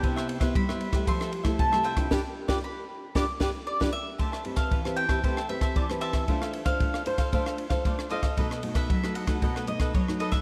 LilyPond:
<<
  \new Staff \with { instrumentName = "Mandolin" } { \time 4/4 \key g \mixolydian \tempo 4 = 115 g''4 b''4 c'''8 r8 a''8 g''8~ | g''4 b''4 d'''8 r8 d''8 e''8~ | \key a \minor e''8. f''8. g''4 e''8 d''8 e''8~ | e''8. f''8. c''4 r8 d''8 dis''8~ |
dis''8. e''8. fis''4 dis''8 cis''8 dis''16 e''16 | }
  \new Staff \with { instrumentName = "Cavaquinho" } { \time 4/4 \key g \mixolydian <g' b' c'' e''>16 <b' c'' e''>16 r16 <b' c'' e''>16 <g' b' c'' e''>16 <b' c'' e''>8 <b' c'' e''>16 <f' a' c'' e''>16 <a' c'' e''>16 r16 <a' c'' e''>8 <a' c'' e''>16 <f' a' c'' e''>16 <a' c'' e''>16 | <g' b' d''>16 r8 <g' b' d''>16 r4 <g' b' d''>16 r16 <g' b' d''>16 r8 <g' b' d''>16 r8 | \key a \minor <g' c'' e'' a''>16 <c'' e'' a''>16 r16 <c'' e'' a''>8 <c'' e'' a''>16 <g' c'' e'' a''>16 <c'' e'' a''>16 <g' c'' e'' a''>16 <c'' e'' a''>16 r16 <c'' e'' a''>16 <g' c'' e'' a''>8 <g' c'' e'' a''>16 <c'' e'' a''>16 | <d' a' c'' f''>16 <a' c'' f''>16 r16 <a' c'' f''>8 <a' c'' f''>16 <d' a' c'' f''>16 <a' c'' f''>16 <d' a' c'' f''>16 <a' c'' f''>16 r16 <a' c'' f''>16 <d' a' c'' f''>8 <d' a' c'' f''>16 <a' c'' f''>16 |
<dis' a' b' dis''>16 <a' b' dis''>16 r16 <a' b' dis''>8 <a' b' dis''>16 <dis' a' b' dis''>16 <a' b' dis''>16 <dis' a' b' dis''>16 <a' b' dis''>16 r16 <a' b' dis''>16 <dis' a' b' dis''>8 <dis' a' b' dis''>16 <a' b' dis''>16 | }
  \new Staff \with { instrumentName = "Nylon-string guitar" } { \time 4/4 \key g \mixolydian << { <b e' g'>8. <b e' g'>8 <b e' g'>8 <a e' g'>4 <a e' g'>8 <a e' g'>8 <d' f' b'>16 | <d' f' g'>16 r8 <d' f' g'>16 r4 <d' f' g'>16 r16 <d' f' g'>16 r8 <d' f' g'>16 r8 | \key a \minor r8 <c' g' b'>8. <c' g' b'>8 <c' g' b'>16 <c' g' b'>16 r16 <c' g' b'>8. <c' g' b'>8. | <d' f' c''>8. <d' f' c''>8. <d' f' c''>16 r16 <d' f' c''>8. <d' f' c''>8. <d' f' c''>16 r16 |
<a dis' fis'>16 r16 <a dis' fis'>8. <a dis' fis'>8 <a dis' fis'>16 <a dis' fis'>8 <a dis' fis'>8 r16 <a dis' fis'>8. | } \\ { c4 g4 f4 c4 | r1 | a4 e4 a4 e4 | a4 a4 a4 a4 |
b,4 fis4 b,4 fis4 | } >> }
  \new DrumStaff \with { instrumentName = "Drums" } \drummode { \time 4/4 <bd cymr>16 ss16 cymr16 <bd cymr ss>16 <bd cymr>16 ss16 cymr16 <bd cymr ss>16 <bd cymr>16 ss16 cymr16 <bd cymr ss>16 <bd cymr>16 ss16 cymr16 <bd cymr ss>16 | <bd sn>8. <bd sn>16 r4 <bd sn>8 <bd sn>8 r16 <bd sn>8. | <bd cymr>16 ss16 cymr16 <bd cymr ss>16 <bd cymr>16 ss16 cymr16 <bd cymr ss>16 <bd cymr>16 ss16 cymr16 <bd cymr ss>16 <bd cymr>16 ss16 cymr16 <bd cymr ss>16 | <bd cymr>16 ss16 cymr16 <bd cymr ss>16 <bd cymr>16 ss16 cymr16 <bd cymr ss>16 <bd cymr>16 ss16 cymr16 <bd cymr ss>16 <bd cymr>16 ss16 cymr16 <bd cymr ss>16 |
<bd cymr>16 ss16 cymr16 <bd cymr ss>16 <bd cymr>16 ss16 cymr16 <bd cymr ss>16 <bd cymr>16 ss16 cymr16 <bd cymr ss>16 <bd cymr>16 ss16 cymr16 <bd cymr ss>16 | }
>>